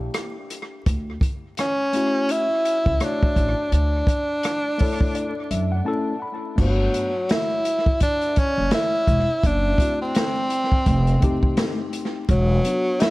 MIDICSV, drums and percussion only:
0, 0, Header, 1, 2, 480
1, 0, Start_track
1, 0, Key_signature, 2, "major"
1, 0, Tempo, 714286
1, 582, Time_signature, 4, 2, 24, 8
1, 8804, End_track
2, 0, Start_track
2, 0, Title_t, "Drums"
2, 94, Note_on_c, 9, 42, 78
2, 98, Note_on_c, 9, 37, 108
2, 161, Note_off_c, 9, 42, 0
2, 165, Note_off_c, 9, 37, 0
2, 338, Note_on_c, 9, 42, 66
2, 340, Note_on_c, 9, 37, 30
2, 405, Note_off_c, 9, 42, 0
2, 407, Note_off_c, 9, 37, 0
2, 580, Note_on_c, 9, 36, 101
2, 580, Note_on_c, 9, 42, 82
2, 647, Note_off_c, 9, 42, 0
2, 648, Note_off_c, 9, 36, 0
2, 813, Note_on_c, 9, 36, 89
2, 824, Note_on_c, 9, 42, 77
2, 881, Note_off_c, 9, 36, 0
2, 891, Note_off_c, 9, 42, 0
2, 1057, Note_on_c, 9, 42, 82
2, 1068, Note_on_c, 9, 37, 118
2, 1125, Note_off_c, 9, 42, 0
2, 1135, Note_off_c, 9, 37, 0
2, 1299, Note_on_c, 9, 42, 79
2, 1366, Note_off_c, 9, 42, 0
2, 1539, Note_on_c, 9, 42, 89
2, 1606, Note_off_c, 9, 42, 0
2, 1783, Note_on_c, 9, 42, 75
2, 1850, Note_off_c, 9, 42, 0
2, 1922, Note_on_c, 9, 36, 91
2, 1989, Note_off_c, 9, 36, 0
2, 2018, Note_on_c, 9, 42, 81
2, 2021, Note_on_c, 9, 37, 117
2, 2085, Note_off_c, 9, 42, 0
2, 2088, Note_off_c, 9, 37, 0
2, 2168, Note_on_c, 9, 36, 91
2, 2235, Note_off_c, 9, 36, 0
2, 2260, Note_on_c, 9, 36, 71
2, 2261, Note_on_c, 9, 42, 71
2, 2327, Note_off_c, 9, 36, 0
2, 2329, Note_off_c, 9, 42, 0
2, 2502, Note_on_c, 9, 42, 72
2, 2569, Note_off_c, 9, 42, 0
2, 2734, Note_on_c, 9, 36, 88
2, 2744, Note_on_c, 9, 42, 82
2, 2801, Note_off_c, 9, 36, 0
2, 2811, Note_off_c, 9, 42, 0
2, 2979, Note_on_c, 9, 42, 79
2, 2990, Note_on_c, 9, 37, 118
2, 3046, Note_off_c, 9, 42, 0
2, 3057, Note_off_c, 9, 37, 0
2, 3219, Note_on_c, 9, 46, 58
2, 3230, Note_on_c, 9, 36, 87
2, 3286, Note_off_c, 9, 46, 0
2, 3297, Note_off_c, 9, 36, 0
2, 3364, Note_on_c, 9, 36, 85
2, 3431, Note_off_c, 9, 36, 0
2, 3460, Note_on_c, 9, 42, 92
2, 3528, Note_off_c, 9, 42, 0
2, 3702, Note_on_c, 9, 42, 72
2, 3769, Note_off_c, 9, 42, 0
2, 4421, Note_on_c, 9, 36, 95
2, 4421, Note_on_c, 9, 49, 84
2, 4488, Note_off_c, 9, 49, 0
2, 4489, Note_off_c, 9, 36, 0
2, 4664, Note_on_c, 9, 42, 75
2, 4732, Note_off_c, 9, 42, 0
2, 4900, Note_on_c, 9, 42, 76
2, 4911, Note_on_c, 9, 38, 114
2, 4968, Note_off_c, 9, 42, 0
2, 4979, Note_off_c, 9, 38, 0
2, 5141, Note_on_c, 9, 42, 86
2, 5208, Note_off_c, 9, 42, 0
2, 5284, Note_on_c, 9, 36, 80
2, 5351, Note_off_c, 9, 36, 0
2, 5379, Note_on_c, 9, 42, 85
2, 5383, Note_on_c, 9, 36, 83
2, 5446, Note_off_c, 9, 42, 0
2, 5450, Note_off_c, 9, 36, 0
2, 5520, Note_on_c, 9, 42, 46
2, 5587, Note_off_c, 9, 42, 0
2, 5619, Note_on_c, 9, 42, 77
2, 5625, Note_on_c, 9, 36, 83
2, 5686, Note_off_c, 9, 42, 0
2, 5692, Note_off_c, 9, 36, 0
2, 5854, Note_on_c, 9, 42, 87
2, 5857, Note_on_c, 9, 38, 108
2, 5921, Note_off_c, 9, 42, 0
2, 5924, Note_off_c, 9, 38, 0
2, 6098, Note_on_c, 9, 36, 71
2, 6100, Note_on_c, 9, 42, 65
2, 6165, Note_off_c, 9, 36, 0
2, 6167, Note_off_c, 9, 42, 0
2, 6340, Note_on_c, 9, 36, 103
2, 6342, Note_on_c, 9, 42, 79
2, 6407, Note_off_c, 9, 36, 0
2, 6409, Note_off_c, 9, 42, 0
2, 6573, Note_on_c, 9, 36, 87
2, 6583, Note_on_c, 9, 42, 88
2, 6640, Note_off_c, 9, 36, 0
2, 6650, Note_off_c, 9, 42, 0
2, 6819, Note_on_c, 9, 42, 87
2, 6830, Note_on_c, 9, 38, 115
2, 6886, Note_off_c, 9, 42, 0
2, 6897, Note_off_c, 9, 38, 0
2, 7057, Note_on_c, 9, 42, 73
2, 7124, Note_off_c, 9, 42, 0
2, 7202, Note_on_c, 9, 36, 74
2, 7270, Note_off_c, 9, 36, 0
2, 7299, Note_on_c, 9, 42, 82
2, 7301, Note_on_c, 9, 36, 88
2, 7366, Note_off_c, 9, 42, 0
2, 7368, Note_off_c, 9, 36, 0
2, 7440, Note_on_c, 9, 42, 48
2, 7507, Note_off_c, 9, 42, 0
2, 7541, Note_on_c, 9, 42, 69
2, 7544, Note_on_c, 9, 36, 87
2, 7608, Note_off_c, 9, 42, 0
2, 7611, Note_off_c, 9, 36, 0
2, 7679, Note_on_c, 9, 36, 82
2, 7746, Note_off_c, 9, 36, 0
2, 7775, Note_on_c, 9, 42, 96
2, 7778, Note_on_c, 9, 38, 120
2, 7842, Note_off_c, 9, 42, 0
2, 7845, Note_off_c, 9, 38, 0
2, 8016, Note_on_c, 9, 42, 76
2, 8083, Note_off_c, 9, 42, 0
2, 8257, Note_on_c, 9, 42, 80
2, 8258, Note_on_c, 9, 36, 104
2, 8324, Note_off_c, 9, 42, 0
2, 8325, Note_off_c, 9, 36, 0
2, 8499, Note_on_c, 9, 42, 91
2, 8566, Note_off_c, 9, 42, 0
2, 8737, Note_on_c, 9, 42, 85
2, 8748, Note_on_c, 9, 38, 115
2, 8804, Note_off_c, 9, 38, 0
2, 8804, Note_off_c, 9, 42, 0
2, 8804, End_track
0, 0, End_of_file